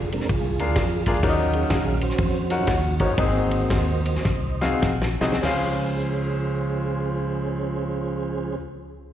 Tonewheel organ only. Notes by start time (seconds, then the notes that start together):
0.13 G#3 C4 D4 A#4
0.30 F4 G#4
1.23 F#3 C#4 F5
1.54 C#4 G#4
2.03 F#4 C5
2.50 F#3 C#4 F4
2.67 C#5
3.00 F#4 C5 D#5
3.17 A#3 C4 F#4
4.06 A#3 C4 F#4
5.43 F3 C#4 G#4 C5